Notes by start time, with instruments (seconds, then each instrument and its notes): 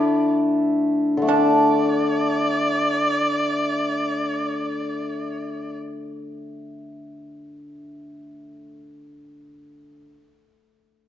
Already playing: hammered dulcimer D3 A3 D4 E4 A4, erhu D5
1.17 hammered dulcimer D3
1.22 hammered dulcimer A3
1.27 hammered dulcimer D4, pipa D4, erhu D5